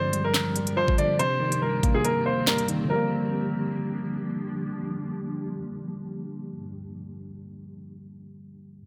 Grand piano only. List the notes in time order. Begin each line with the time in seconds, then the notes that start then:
Already playing: C5
0.24 A#4
0.77 C5
0.98 D5
1.19 C5
1.62 A#4
1.94 G#4
2.04 A#4
2.26 C5
2.47 A#4
2.90 A#4